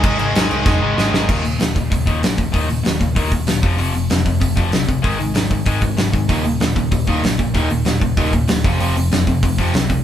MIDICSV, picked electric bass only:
0, 0, Header, 1, 2, 480
1, 0, Start_track
1, 0, Tempo, 312989
1, 55, Time_signature, 4, 2, 24, 8
1, 15396, End_track
2, 0, Start_track
2, 0, Title_t, "Picked electric bass"
2, 0, Program_c, 0, 34
2, 58, Note_on_c, 0, 32, 102
2, 259, Note_off_c, 0, 32, 0
2, 298, Note_on_c, 0, 32, 90
2, 499, Note_off_c, 0, 32, 0
2, 537, Note_on_c, 0, 32, 100
2, 738, Note_off_c, 0, 32, 0
2, 763, Note_on_c, 0, 36, 90
2, 970, Note_off_c, 0, 36, 0
2, 1012, Note_on_c, 0, 29, 94
2, 1215, Note_off_c, 0, 29, 0
2, 1257, Note_on_c, 0, 32, 89
2, 1458, Note_off_c, 0, 32, 0
2, 1503, Note_on_c, 0, 32, 97
2, 1701, Note_off_c, 0, 32, 0
2, 1734, Note_on_c, 0, 32, 85
2, 1935, Note_off_c, 0, 32, 0
2, 1980, Note_on_c, 0, 27, 91
2, 2395, Note_off_c, 0, 27, 0
2, 2445, Note_on_c, 0, 27, 89
2, 2657, Note_off_c, 0, 27, 0
2, 2701, Note_on_c, 0, 27, 81
2, 2906, Note_off_c, 0, 27, 0
2, 2942, Note_on_c, 0, 27, 87
2, 3146, Note_off_c, 0, 27, 0
2, 3173, Note_on_c, 0, 27, 79
2, 3381, Note_off_c, 0, 27, 0
2, 3409, Note_on_c, 0, 34, 87
2, 3829, Note_off_c, 0, 34, 0
2, 3890, Note_on_c, 0, 27, 99
2, 4100, Note_off_c, 0, 27, 0
2, 4124, Note_on_c, 0, 27, 76
2, 4337, Note_off_c, 0, 27, 0
2, 4353, Note_on_c, 0, 27, 82
2, 4570, Note_off_c, 0, 27, 0
2, 4608, Note_on_c, 0, 27, 82
2, 4819, Note_off_c, 0, 27, 0
2, 4851, Note_on_c, 0, 27, 94
2, 5271, Note_off_c, 0, 27, 0
2, 5332, Note_on_c, 0, 27, 88
2, 5541, Note_off_c, 0, 27, 0
2, 5569, Note_on_c, 0, 29, 81
2, 5779, Note_off_c, 0, 29, 0
2, 5813, Note_on_c, 0, 29, 95
2, 6231, Note_off_c, 0, 29, 0
2, 6295, Note_on_c, 0, 29, 89
2, 6502, Note_off_c, 0, 29, 0
2, 6530, Note_on_c, 0, 29, 87
2, 6740, Note_off_c, 0, 29, 0
2, 6770, Note_on_c, 0, 29, 86
2, 6980, Note_off_c, 0, 29, 0
2, 7012, Note_on_c, 0, 29, 78
2, 7221, Note_off_c, 0, 29, 0
2, 7256, Note_on_c, 0, 34, 95
2, 7674, Note_off_c, 0, 34, 0
2, 7734, Note_on_c, 0, 32, 99
2, 7942, Note_off_c, 0, 32, 0
2, 7968, Note_on_c, 0, 32, 76
2, 8179, Note_off_c, 0, 32, 0
2, 8202, Note_on_c, 0, 32, 83
2, 8415, Note_off_c, 0, 32, 0
2, 8449, Note_on_c, 0, 32, 88
2, 8660, Note_off_c, 0, 32, 0
2, 8689, Note_on_c, 0, 32, 90
2, 9110, Note_off_c, 0, 32, 0
2, 9171, Note_on_c, 0, 32, 92
2, 9592, Note_off_c, 0, 32, 0
2, 9651, Note_on_c, 0, 27, 90
2, 10072, Note_off_c, 0, 27, 0
2, 10130, Note_on_c, 0, 27, 86
2, 10341, Note_off_c, 0, 27, 0
2, 10374, Note_on_c, 0, 27, 86
2, 10584, Note_off_c, 0, 27, 0
2, 10608, Note_on_c, 0, 27, 94
2, 10820, Note_off_c, 0, 27, 0
2, 10844, Note_on_c, 0, 27, 86
2, 11058, Note_off_c, 0, 27, 0
2, 11096, Note_on_c, 0, 34, 88
2, 11515, Note_off_c, 0, 34, 0
2, 11566, Note_on_c, 0, 27, 94
2, 11780, Note_off_c, 0, 27, 0
2, 11813, Note_on_c, 0, 27, 79
2, 12024, Note_off_c, 0, 27, 0
2, 12055, Note_on_c, 0, 27, 92
2, 12265, Note_off_c, 0, 27, 0
2, 12295, Note_on_c, 0, 27, 78
2, 12505, Note_off_c, 0, 27, 0
2, 12535, Note_on_c, 0, 27, 88
2, 12955, Note_off_c, 0, 27, 0
2, 13022, Note_on_c, 0, 27, 101
2, 13254, Note_off_c, 0, 27, 0
2, 13254, Note_on_c, 0, 29, 83
2, 13464, Note_off_c, 0, 29, 0
2, 13503, Note_on_c, 0, 29, 92
2, 13919, Note_off_c, 0, 29, 0
2, 13987, Note_on_c, 0, 29, 86
2, 14192, Note_off_c, 0, 29, 0
2, 14220, Note_on_c, 0, 29, 88
2, 14427, Note_off_c, 0, 29, 0
2, 14464, Note_on_c, 0, 29, 93
2, 14670, Note_off_c, 0, 29, 0
2, 14694, Note_on_c, 0, 29, 80
2, 14904, Note_off_c, 0, 29, 0
2, 14940, Note_on_c, 0, 36, 93
2, 15357, Note_off_c, 0, 36, 0
2, 15396, End_track
0, 0, End_of_file